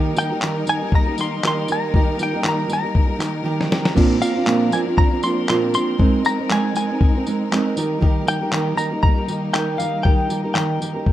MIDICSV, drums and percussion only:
0, 0, Header, 1, 2, 480
1, 0, Start_track
1, 0, Key_signature, -3, "major"
1, 0, Tempo, 506757
1, 1840, Time_signature, 4, 2, 24, 8
1, 10539, End_track
2, 0, Start_track
2, 0, Title_t, "Drums"
2, 157, Note_on_c, 9, 54, 75
2, 252, Note_off_c, 9, 54, 0
2, 394, Note_on_c, 9, 39, 123
2, 489, Note_off_c, 9, 39, 0
2, 634, Note_on_c, 9, 54, 67
2, 729, Note_off_c, 9, 54, 0
2, 873, Note_on_c, 9, 36, 125
2, 968, Note_off_c, 9, 36, 0
2, 1115, Note_on_c, 9, 54, 66
2, 1210, Note_off_c, 9, 54, 0
2, 1362, Note_on_c, 9, 39, 116
2, 1456, Note_off_c, 9, 39, 0
2, 1595, Note_on_c, 9, 54, 72
2, 1689, Note_off_c, 9, 54, 0
2, 1837, Note_on_c, 9, 36, 111
2, 1932, Note_off_c, 9, 36, 0
2, 2075, Note_on_c, 9, 54, 75
2, 2170, Note_off_c, 9, 54, 0
2, 2311, Note_on_c, 9, 39, 127
2, 2405, Note_off_c, 9, 39, 0
2, 2554, Note_on_c, 9, 54, 68
2, 2648, Note_off_c, 9, 54, 0
2, 2795, Note_on_c, 9, 36, 120
2, 2889, Note_off_c, 9, 36, 0
2, 3035, Note_on_c, 9, 54, 66
2, 3038, Note_on_c, 9, 39, 84
2, 3130, Note_off_c, 9, 54, 0
2, 3132, Note_off_c, 9, 39, 0
2, 3416, Note_on_c, 9, 38, 71
2, 3510, Note_off_c, 9, 38, 0
2, 3525, Note_on_c, 9, 38, 107
2, 3620, Note_off_c, 9, 38, 0
2, 3651, Note_on_c, 9, 38, 104
2, 3745, Note_off_c, 9, 38, 0
2, 3760, Note_on_c, 9, 36, 109
2, 3765, Note_on_c, 9, 49, 83
2, 3855, Note_off_c, 9, 36, 0
2, 3859, Note_off_c, 9, 49, 0
2, 3998, Note_on_c, 9, 54, 76
2, 4092, Note_off_c, 9, 54, 0
2, 4232, Note_on_c, 9, 39, 121
2, 4326, Note_off_c, 9, 39, 0
2, 4474, Note_on_c, 9, 54, 68
2, 4569, Note_off_c, 9, 54, 0
2, 4713, Note_on_c, 9, 36, 122
2, 4808, Note_off_c, 9, 36, 0
2, 4951, Note_on_c, 9, 54, 67
2, 5046, Note_off_c, 9, 54, 0
2, 5196, Note_on_c, 9, 39, 121
2, 5290, Note_off_c, 9, 39, 0
2, 5436, Note_on_c, 9, 54, 76
2, 5531, Note_off_c, 9, 54, 0
2, 5678, Note_on_c, 9, 36, 115
2, 5773, Note_off_c, 9, 36, 0
2, 5918, Note_on_c, 9, 54, 71
2, 6013, Note_off_c, 9, 54, 0
2, 6157, Note_on_c, 9, 39, 126
2, 6252, Note_off_c, 9, 39, 0
2, 6399, Note_on_c, 9, 54, 69
2, 6494, Note_off_c, 9, 54, 0
2, 6638, Note_on_c, 9, 36, 126
2, 6733, Note_off_c, 9, 36, 0
2, 6882, Note_on_c, 9, 54, 65
2, 6977, Note_off_c, 9, 54, 0
2, 7129, Note_on_c, 9, 39, 126
2, 7223, Note_off_c, 9, 39, 0
2, 7359, Note_on_c, 9, 54, 77
2, 7453, Note_off_c, 9, 54, 0
2, 7601, Note_on_c, 9, 36, 113
2, 7696, Note_off_c, 9, 36, 0
2, 7840, Note_on_c, 9, 54, 72
2, 7935, Note_off_c, 9, 54, 0
2, 8073, Note_on_c, 9, 39, 125
2, 8167, Note_off_c, 9, 39, 0
2, 8317, Note_on_c, 9, 54, 66
2, 8411, Note_off_c, 9, 54, 0
2, 8556, Note_on_c, 9, 36, 124
2, 8650, Note_off_c, 9, 36, 0
2, 8794, Note_on_c, 9, 54, 66
2, 8889, Note_off_c, 9, 54, 0
2, 9039, Note_on_c, 9, 39, 122
2, 9133, Note_off_c, 9, 39, 0
2, 9280, Note_on_c, 9, 54, 70
2, 9374, Note_off_c, 9, 54, 0
2, 9521, Note_on_c, 9, 36, 122
2, 9616, Note_off_c, 9, 36, 0
2, 9757, Note_on_c, 9, 54, 72
2, 9852, Note_off_c, 9, 54, 0
2, 10000, Note_on_c, 9, 39, 120
2, 10094, Note_off_c, 9, 39, 0
2, 10247, Note_on_c, 9, 54, 66
2, 10342, Note_off_c, 9, 54, 0
2, 10480, Note_on_c, 9, 36, 116
2, 10539, Note_off_c, 9, 36, 0
2, 10539, End_track
0, 0, End_of_file